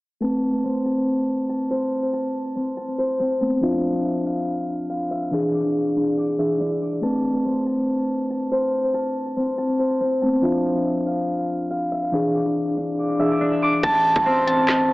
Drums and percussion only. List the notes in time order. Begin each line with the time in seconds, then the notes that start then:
13.83 kick, closed hi-hat, crash
14.16 kick, closed hi-hat
14.48 closed hi-hat
14.69 snare, clap, closed hi-hat